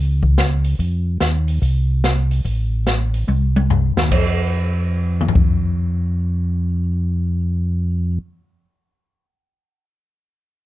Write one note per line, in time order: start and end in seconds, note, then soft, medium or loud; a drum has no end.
0.00 0.75 C#2 medium
0.23 kick medium
0.38 snare medium
0.38 closed hi-hat medium
0.64 open hi-hat soft
0.79 1.18 F2 medium
0.79 kick soft
0.79 open hi-hat soft
1.20 1.59 D#2 medium
1.20 snare medium
1.20 closed hi-hat medium
1.48 open hi-hat soft
1.62 2.41 C2 medium
1.62 kick soft
1.62 open hi-hat soft
2.04 snare medium
2.04 closed hi-hat medium
2.31 open hi-hat soft
2.45 3.24 A1 medium
2.45 kick soft
2.45 open hi-hat soft
2.87 snare medium
2.87 closed hi-hat medium
3.14 open hi-hat soft
3.27 3.92 C2 medium
3.27 high tom soft
3.56 high tom medium
3.70 floor tom medium
3.97 4.10 D#2 medium
3.97 snare medium
4.11 8.18 F2 medium
4.11 kick soft
4.11 crash medium
5.21 mid tom medium
5.29 floor tom medium
5.35 kick medium